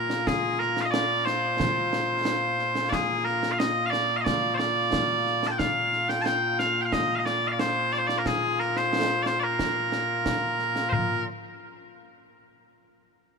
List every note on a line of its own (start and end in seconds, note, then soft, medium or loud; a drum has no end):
0.00 11.23 A#2 medium
0.00 11.23 A#3 medium
0.00 11.23 F4 medium
0.00 0.27 A#4 medium
0.10 snare medium
0.27 0.59 G#4 medium
0.27 concert bass drum medium
0.27 snare loud
0.59 0.81 A#4 medium
0.59 snare soft
0.77 snare medium
0.81 0.85 F5 medium
0.85 0.91 D#5 medium
0.91 1.25 D5 loud
0.91 snare loud
1.25 2.89 C5 loud
1.25 snare medium
1.60 concert bass drum medium
1.60 snare loud
1.93 snare medium
2.25 snare loud
2.59 snare soft
2.75 snare medium
2.89 3.25 G#4 medium
2.89 2.93 D5 medium
2.89 concert bass drum medium
2.89 snare medium
3.25 3.52 A#4 loud
3.25 snare soft
3.43 snare medium
3.52 3.59 F5 medium
3.59 3.86 D#5 loud
3.59 snare loud
3.86 3.90 F5 loud
3.90 4.17 D5 loud
3.90 snare medium
4.17 4.21 F5 medium
4.21 4.54 D5 loud
4.21 4.25 D#5 medium
4.26 concert bass drum medium
4.26 snare medium
4.54 4.57 C5 medium
4.54 5.47 D5 loud
4.59 snare medium
4.93 concert bass drum medium
4.93 snare loud
5.26 snare soft
5.43 snare medium
5.47 5.58 G5 medium
5.47 5.51 A5 medium
5.58 6.09 F5 loud
5.58 concert bass drum medium
5.58 snare medium
5.93 snare soft
6.09 6.22 G5 loud
6.09 snare medium
6.22 6.59 G5 loud
6.22 6.25 A5 loud
6.26 snare loud
6.59 6.81 F5 loud
6.59 snare medium
6.81 6.93 F5 medium
6.81 6.85 G5 medium
6.92 7.15 D#5 loud
6.92 concert bass drum medium
6.92 snare loud
7.15 7.26 D#5 medium
7.15 7.19 F5 medium
7.26 7.48 D5 medium
7.26 snare medium
7.48 7.52 F5 medium
7.52 7.59 D5 medium
7.59 7.92 C5 loud
7.59 snare loud
7.92 7.98 D5 loud
7.92 snare soft
7.98 8.07 C5 medium
8.07 8.18 D5 loud
8.07 snare medium
8.18 8.27 A#4 medium
8.26 8.60 G#4 medium
8.26 concert bass drum medium
8.26 snare medium
8.60 8.77 A#4 medium
8.60 snare soft
8.76 9.22 C5 loud
8.76 snare medium
8.93 snare loud
9.22 9.26 D5 medium
9.22 snare medium
9.26 9.40 C5 medium
9.40 10.89 A#4 medium
9.40 9.43 D5 medium
9.59 concert bass drum medium
9.59 snare medium
9.92 snare medium
10.26 concert bass drum medium
10.26 snare loud
10.59 snare soft
10.76 snare medium
10.89 11.23 A#4 medium
10.89 10.92 C5 medium
10.89 mid tom loud